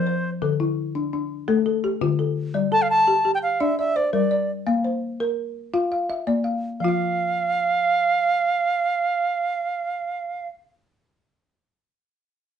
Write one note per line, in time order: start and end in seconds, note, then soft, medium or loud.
0.00 0.24 F3 medium
0.00 0.24 A#4 medium
0.00 0.30 C5 medium
0.07 0.60 C5 medium
0.42 0.78 D3 medium
0.42 0.95 A4 medium
0.60 1.13 E4 medium
0.95 1.12 D4 medium
1.13 1.66 D4 medium
1.48 1.84 A3 medium
1.48 1.65 A4 medium
1.66 2.18 A4 medium
1.84 2.37 G4 medium
2.01 2.37 D3 medium
2.01 2.55 F4 medium
2.19 2.71 A4 medium
2.54 2.90 G3 medium
2.54 3.08 D5 medium
2.72 3.25 A4 medium
2.72 2.83 A5 loud
2.82 2.90 F5 medium
2.90 3.31 A5 medium
3.07 3.24 G4 medium
3.25 3.78 G4 medium
3.35 3.39 G5 medium
3.43 3.62 F5 medium
3.60 3.96 D4 medium
3.60 3.78 D5 medium
3.60 3.78 E5 medium
3.79 4.30 D5 medium
3.79 3.98 E5 medium
3.96 4.49 C5 medium
3.96 4.13 D5 medium
4.13 4.49 G3 medium
4.13 4.67 A#4 medium
4.13 4.51 D5 medium
4.31 4.85 D5 medium
4.67 5.02 A#3 medium
4.67 5.20 F5 medium
4.84 5.38 C5 medium
5.20 5.56 A#4 medium
5.74 6.09 F4 medium
5.74 5.90 F5 medium
5.92 6.43 F5 medium
6.10 6.63 E5 medium
6.27 6.62 A#3 medium
6.27 6.80 D5 medium
6.44 6.87 F5 medium
6.80 10.53 F3 medium
6.80 10.48 F5 medium
6.84 10.57 F4 medium
6.84 10.61 F5 medium